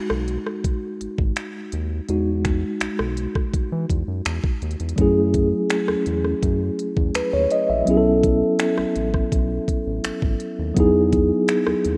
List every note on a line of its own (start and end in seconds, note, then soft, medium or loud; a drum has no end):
0.00 0.24 G#3 medium
0.00 0.24 D#4 medium
0.00 0.25 F#4 medium
0.10 0.38 B1 loud
0.10 cross-stick medium
0.28 closed hi-hat medium
0.46 cross-stick medium
0.64 kick loud
0.64 closed hi-hat medium
1.01 1.08 G#1 soft
1.01 closed hi-hat medium
1.18 1.32 G#1 medium
1.18 kick loud
1.36 finger snap medium
1.36 closed hi-hat medium
1.72 2.01 D#2 medium
1.72 closed hi-hat medium
2.09 2.64 E2 loud
2.09 2.57 G#3 medium
2.09 2.57 D#4 soft
2.09 2.58 F#4 medium
2.09 closed hi-hat medium
2.45 finger snap medium
2.45 kick medium
2.45 closed hi-hat medium
2.81 2.89 B1 soft
2.81 finger snap loud
2.81 closed hi-hat medium
2.99 3.27 B1 medium
2.99 cross-stick medium
3.17 closed hi-hat medium
3.35 kick medium
3.35 cross-stick medium
3.54 kick medium
3.54 closed hi-hat medium
3.72 3.86 E3 loud
3.90 4.04 E2 medium
3.90 kick medium
3.90 closed hi-hat medium
4.08 4.22 F#2 medium
4.25 4.40 E2 medium
4.25 finger snap loud
4.25 closed hi-hat medium
4.44 kick medium
4.62 4.76 D#2 loud
4.62 closed hi-hat soft
4.71 closed hi-hat soft
4.80 4.94 E2 medium
4.80 closed hi-hat medium
4.89 closed hi-hat medium
4.96 5.53 F#2 loud
4.96 7.82 F#3 medium
4.96 7.83 A3 medium
4.96 7.84 C#4 medium
4.96 kick loud
4.96 closed hi-hat medium
5.00 7.84 E4 medium
5.00 7.85 G#4 medium
5.34 kick medium
5.34 closed hi-hat medium
5.70 finger snap loud
5.70 closed hi-hat medium
5.88 5.96 E2 soft
5.88 cross-stick medium
6.06 6.34 E2 medium
6.06 closed hi-hat medium
6.25 cross-stick medium
6.43 6.70 F#2 loud
6.43 kick medium
6.43 closed hi-hat medium
6.79 closed hi-hat medium
6.97 7.11 E2 medium
6.97 kick loud
7.15 7.22 D#2 soft
7.15 7.32 B4 medium
7.15 finger snap loud
7.15 closed hi-hat medium
7.33 7.47 D#2 medium
7.33 7.50 C#5 medium
7.50 7.69 D#5 medium
7.50 closed hi-hat medium
7.70 7.83 A#1 medium
7.70 8.04 E5 medium
7.85 8.43 B1 loud
7.85 10.71 F#3 medium
7.85 10.72 B3 medium
7.85 10.73 C#4 medium
7.85 closed hi-hat medium
7.89 10.73 E4 medium
7.89 7.95 G#4 medium
7.97 10.77 A4 medium
8.23 kick medium
8.23 closed hi-hat medium
8.59 finger snap loud
8.59 closed hi-hat medium
8.78 8.85 A1 soft
8.78 cross-stick medium
8.96 9.24 A1 medium
8.96 closed hi-hat medium
9.14 kick medium
9.14 cross-stick medium
9.32 9.60 B1 medium
9.32 kick loud
9.32 closed hi-hat medium
9.68 kick medium
9.68 closed hi-hat medium
9.87 10.00 A1 medium
10.04 10.12 G#1 soft
10.04 finger snap medium
10.04 closed hi-hat medium
10.22 10.36 G#1 medium
10.22 kick medium
10.40 closed hi-hat medium
10.59 10.73 D#2 medium
10.74 11.32 E2 loud
10.74 11.97 F#3 medium
10.74 11.97 B3 medium
10.74 11.97 D#4 medium
10.74 kick loud
10.74 closed hi-hat medium
10.79 11.97 E4 medium
10.79 11.97 G#4 medium
11.13 kick medium
11.13 closed hi-hat medium
11.48 finger snap loud
11.48 closed hi-hat medium
11.67 11.74 D#2 medium
11.67 cross-stick medium
11.85 11.97 D#2 medium
11.85 closed hi-hat medium